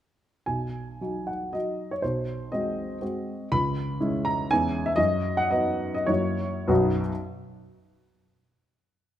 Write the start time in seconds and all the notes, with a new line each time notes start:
0.46 B1 G#5
1.01 F#3 D#4 F#4
1.27 F#5
1.53 F#3 D#4 F#4 D#5
1.91 C#5
2.02 B1 C5
2.52 G#3 C4 F#4 D#5
3.01 G#3 C4 F#4
3.52 C#2 B5
4.00 G#3 C#4 E4
4.25 A#5
4.51 E2 G#3 C#4 E4 G#5
4.86 E5
4.96 F#2 D#5
5.37 F#5
5.51 F#3 B3 D#4 D#5
5.95 D#5
6.07 F#2 F#3 A#3 E4 C#5
6.68 B1 F#2 F#3 B3 D#4 F#4 B4